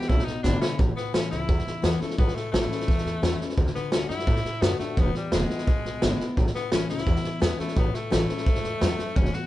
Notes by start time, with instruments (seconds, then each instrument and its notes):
Already playing: tenor saxophone G4
0.01 snare
0.09 upright bass C#2, steel-string acoustic guitar B2, tenor saxophone E4, kick, snare
0.19 snare
0.25 tenor saxophone D#4, muted upright bass stroke, snare
0.43 upright bass G#1, steel-string acoustic guitar D3 G#3 B3 E4, tenor saxophone D4, kick, snare, hi-hat pedal
0.61 tenor saxophone C#4, muted upright bass stroke, snare
0.78 upright bass A1, steel-string acoustic guitar A2, kick, snare
0.97 tenor saxophone B3, muted upright bass stroke, snare
1.13 upright bass A1, steel-string acoustic guitar E3 A3 C#4 E4, tenor saxophone C#4, snare, hi-hat pedal
1.31 upright bass C#2, tenor saxophone E4, snare
1.48 steel-string acoustic guitar E2, upright bass E2, kick, snare
1.58 snare
1.67 muted upright bass stroke, snare
1.82 upright bass E2, steel-string acoustic guitar E3 A3 C#4 E4, tenor saxophone B3, snare, hi-hat pedal
2.00 tenor saxophone A3, steel-string acoustic guitar C#4 E4, muted upright bass stroke, snare
2.10 snare
2.18 upright bass A1, steel-string acoustic guitar A2, tenor saxophone B3, kick, snare
2.28 snare
2.35 tenor saxophone A3, muted upright bass stroke, snare
2.52 upright bass A1, steel-string acoustic guitar E3 A3 C#4 E4, tenor saxophone A3, snare, hi-hat pedal
2.69 steel-string acoustic guitar C#4 E4, muted upright bass stroke, snare
2.80 snare
2.87 steel-string acoustic guitar E2, upright bass E2, kick, snare
2.98 snare
3.05 upright bass E2, snare
3.22 upright bass E2, steel-string acoustic guitar E3 A3 C#4 E4, snare, hi-hat pedal
3.40 steel-string acoustic guitar C#4 E4, muted upright bass stroke, snare
3.49 snare
3.58 upright bass D2, steel-string acoustic guitar D3, kick, snare
3.67 snare
3.75 tenor saxophone B3, muted upright bass stroke, snare
3.92 upright bass D2, steel-string acoustic guitar D3 A3 D4 F#4, tenor saxophone C#4, snare, hi-hat pedal
4.09 upright bass F#2, steel-string acoustic guitar D4 F#4, tenor saxophone E4, snare
4.19 snare
4.26 steel-string acoustic guitar A2, upright bass A2, kick, snare
4.36 snare
4.45 muted upright bass stroke, snare
4.62 upright bass F#2, steel-string acoustic guitar D3 A3 D4 F#4, tenor saxophone B3, snare, hi-hat pedal
4.79 tenor saxophone A3, steel-string acoustic guitar D4 F#4, muted upright bass stroke, snare
4.97 upright bass E1, steel-string acoustic guitar E2, tenor saxophone B3, kick, snare
5.14 tenor saxophone G3, muted upright bass stroke, snare
5.32 upright bass E1, steel-string acoustic guitar D3 G#3 B3 E4, tenor saxophone G#3, snare, hi-hat pedal
5.50 steel-string acoustic guitar B3 E4, muted upright bass stroke, snare
5.58 snare
5.67 upright bass B1, steel-string acoustic guitar B2, kick, snare
5.85 upright bass B1, snare
6.02 upright bass G#1, steel-string acoustic guitar D3 G#3 B3 E4, snare, hi-hat pedal
6.19 steel-string acoustic guitar B3 E4, muted upright bass stroke, snare
6.37 upright bass A1, steel-string acoustic guitar A2, kick, snare
6.47 snare
6.54 tenor saxophone B3, muted upright bass stroke, snare
6.71 upright bass A1, steel-string acoustic guitar E3 A3 C#4 E4, tenor saxophone C#4, snare, hi-hat pedal
6.89 upright bass C#2, steel-string acoustic guitar C#4 E4, tenor saxophone E4, snare
6.98 snare
7.06 steel-string acoustic guitar E2, upright bass E2, kick, snare
7.15 snare
7.24 muted upright bass stroke, snare
7.40 upright bass E2, steel-string acoustic guitar E3 A3 C#4 E4, tenor saxophone B3, snare, hi-hat pedal
7.57 tenor saxophone A3, steel-string acoustic guitar C#4 E4, muted upright bass stroke, snare
7.68 snare
7.75 upright bass A1, steel-string acoustic guitar A2, tenor saxophone B3, kick, snare
7.94 tenor saxophone A3, muted upright bass stroke, snare
8.10 upright bass A1, steel-string acoustic guitar E3 A3 C#4 E4, tenor saxophone A3, snare, hi-hat pedal
8.29 steel-string acoustic guitar C#4 E4, muted upright bass stroke, snare
8.38 snare
8.46 upright bass E2, steel-string acoustic guitar G#2, kick, snare
8.55 snare
8.64 upright bass E2, snare
8.81 upright bass E2, steel-string acoustic guitar F#2, snare, hi-hat pedal
8.99 muted upright bass stroke, snare
9.16 upright bass E1, steel-string acoustic guitar E2, tenor saxophone C#4, kick, snare
9.25 snare
9.33 tenor saxophone F#4, muted upright bass stroke, snare